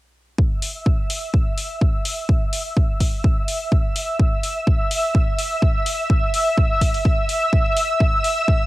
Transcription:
0.38 E5 E6, kick
0.62 open hi-hat
0.86 kick
1.10 open hi-hat
1.34 kick
1.58 open hi-hat
1.81 kick
2.05 open hi-hat
2.29 kick
2.53 open hi-hat
2.77 kick
3.00 kick, open hi-hat
3.24 kick
3.48 open hi-hat
3.72 kick
3.96 open hi-hat
4.19 kick
4.43 open hi-hat
4.67 kick
4.91 open hi-hat
5.15 kick
5.39 open hi-hat
5.62 kick
5.86 open hi-hat
6.10 kick
6.34 open hi-hat
6.58 kick
6.81 kick, open hi-hat
6.94 open hi-hat
7.05 kick
7.29 open hi-hat
7.53 kick
7.77 open hi-hat
8.00 kick
8.24 open hi-hat
8.48 kick

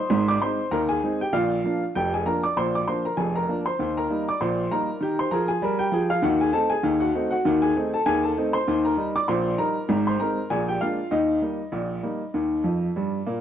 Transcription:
Already playing: C5 C6
0.10 G#1 G#2
0.28 D5 D6
0.42 G#3 C4 D#4 C5 C6
0.71 D#2 D#3 A#4 A#5
0.89 G#4 G#5
1.03 G#3 C4 D#4
1.21 G4 G5
1.33 A#1 A#2 F4 F5
1.64 F3 A#3 D4
1.95 F1 F2 G4 G5
2.14 G#4 G#5
2.26 F3 A#3 D4 A#4 A#5
2.43 D5 D6
2.57 A#1 A#2 C5 C6
2.75 D5 D6
2.88 F3 A#3 D4 C5 C6
3.05 A#4 A#5
3.17 F1 F2 G#4 G#5
3.36 A#4 A#5
3.49 F3 A#3 D4
3.66 C5 C6
3.79 D#2 D#3
3.97 A#4 A#5
4.10 G3 A#3 D#4
4.29 D5 D6
4.41 A#1 A#2 C5 C6
4.71 G3 A#3 D#4 A#4 A#5
5.01 D#3 G4
5.19 C5 C6
5.31 F3 G#4 A#4 A#5
5.48 G#4 G#5
5.62 G3 A#4
5.79 G4 G5
5.92 F3 G#4
6.10 F4 F5
6.22 D#2 D#3 F#4 F#5
6.41 G#4 G#5
6.52 A3 C4 D#4 A4 A5
6.70 G#4 G#5
6.83 D#2 D#3
7.00 F#4 F#5
7.15 A3 C4 D#4
7.31 F#4 F#5
7.45 D#2 D#3
7.62 G#4 G#5
7.76 A3 C4 D#4
7.94 A4 A5
8.06 D#2 D#3 G#4 G#5
8.23 A4 A5
8.37 A3 C4 D#4
8.53 C5 C6
8.68 D#2 D#3
8.85 A#4 A#5
8.97 G3 D#4
9.16 D5 D6
9.28 A#1 A#2 C5 C6
9.58 G3 D#4 A#4 A#5
9.89 G#1 G#2
10.07 C5 C6
10.20 G#3 C4 D#4 A#4 A#5
10.50 A#1 A#2 G#4 G#5
10.68 G4 G5
10.81 G#3 A#3 D4 F4 F5
11.11 D#2 D#3 D#4 D#5
11.42 G3 A#3 D#4
11.72 A#1 A#2
12.03 G3 A#3 D#4
12.34 D#2 D#3
12.64 F2 F3
12.96 G2 G3
13.26 A#2 A#3

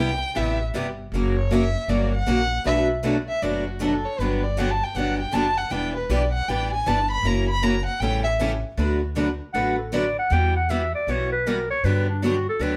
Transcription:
Already playing: C2 G5
0.35 A1 C3 G3 B3 E4 G4 E5
0.74 G1 C3 G3 B3 E4 G4
1.12 F#1 C#3 F#3 A#3 C#4 F#4 A#4
1.37 C#5
1.51 C#3 F#3 A#3 C#4 F#4 A#4 E5
1.88 G1 C#3 F#3 A#3 C#4 F#4 A#4 D5
2.15 F#5
2.26 A#1 C#3 F#3 A#3 C#4 F#4 A#4
2.64 B1 B2 F#3 A3 D4 F#4 B4 E5
3.03 B2 F#3 A3 D4 F#4 B4
3.28 E5
3.42 F#1 B2 F#3 A3 D4 F#4 B4 D5
3.67 F#4
3.79 B2 F#3 A3 D4 F#4 A4 B4
4.05 C#5
4.19 G1 D3 F#3 B3 D4 G4 B4
4.43 D5
4.57 D3 F#3 B3 D4 G4 F#5
4.71 A5
4.83 G5
4.94 G1 D3 F#3 B3 D4 G4 F#5
5.19 G5
5.32 F#1 D3 F#3 B3 D4 G4 A5
5.57 F#5
5.70 E1 E3 G3 B3 D4 E4 G4 B4 G5
5.96 B4
6.09 B1 E3 G3 B3 D4 E4 G4 B4 D5
6.33 F#5
6.48 A1 E3 G3 B3 D4 E4 G4 B4 G5
6.73 G#5
6.86 G1 E3 G3 B3 D4 E4 G4 B4 A5
7.11 B5
7.23 F#1 C#3 E3 F#3 A#3 C#4 E4 F#4 A#4 A#5
7.49 B5
7.62 C#3 E3 F#3 A#3 C#4 E4 F#4 A#4 A#5
7.86 F#5
8.00 A1 C#3 E3 G3 A3 C#4 E4 G4 A4 G5
8.24 E5
8.39 C#3 E3 G3 A3 C#4 E4 G4 A4
8.77 D2 D3 F#3 A3 B3 D4 F#4 B4
9.15 D3 F#3 A3 B3 D4 F#4 B4
9.53 A1 D3 F#3 A3 B3 D4 F#4 B4 F#5
9.78 A4
9.92 D3 F#3 A3 B3 D4 F#4 B4 D5
10.19 F#5
10.30 E2 E3 G3 B3 F#4 G5
10.56 F#5
10.69 E3 G3 B3 F#4 E5
10.95 D5
11.07 B1 E3 G3 B3 F#4 C#5
11.33 B4
11.47 E3 G3 B3 F#4 A#4
11.70 C#5
11.84 G2 D3 F#3 B3 D4 G4 B4
12.09 D4
12.24 D3 F#3 B3 D4 F#4 G4
12.49 A4
12.60 D2 D3 F#3 B3 D4 G4 B4

